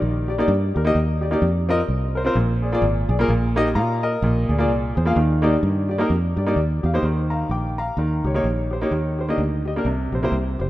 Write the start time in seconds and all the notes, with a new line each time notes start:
Already playing: D#3
0.02 A#1
0.28 G4 D5
0.38 A#3 D#4 G4 D5
0.48 G2
0.75 D#2 G4 A#4
0.85 A#3 D#4 G4 D#5
0.95 D#2
1.21 G4 D5
1.31 A#3 D#4 G4 D5
1.42 F2
1.69 C4 F4 A#4 D#5
1.88 C2
2.15 A#4 C5
2.25 C4 F4 A#4 C5
2.35 A#1 A#2
2.62 G#4 D5
2.72 A#3 F4 G#4 D5
2.82 G#1
3.09 B1 G#4 D5
3.19 A#3 F4 G#4 A#4
3.28 A#1 A#2
3.56 A#3 D#4 G4 D#5
3.75 A#2 F5 A#5
4.03 A#4 D#5
4.22 A#1 A#2
4.49 D2 G#4 D5
4.58 A#3 F4 G#4 D5
4.69 C2
4.95 E2 G#4 C5
5.05 A#3 F4 G#4 F5
5.16 D#2 D#3
5.42 A#3 D#4 G4 D5
5.63 G2
5.89 G4 D5
5.98 A#3 D#4 G4 A#4
6.10 F2
6.36 G2 G4 D5
6.46 A#3 D#4 G4 D5
6.56 D#2
6.83 E2 G4 F5
6.93 A#3 D#4 G4 C5
7.03 D#2 D#3
7.30 F5 A#5
7.49 A#1 G5 D6
7.78 F5 A#5
7.97 D#2 D#3
8.24 C#2 G4 C#5
8.34 A#3 D#4 G4 C#5
8.44 A#1
8.71 G4 C5
8.81 A#3 D#4 G4 C#5
8.91 D#2 D#3
9.19 G4 C5
9.28 A#3 D4 G4 D#5
9.38 D2
9.65 G4 D#5
9.76 A#3 D4 G4 A#4
9.85 C2 C3
10.12 A#1 G4 C5
10.23 A#3 E4 G4 C5
10.32 C2
10.59 F#1 G4 C5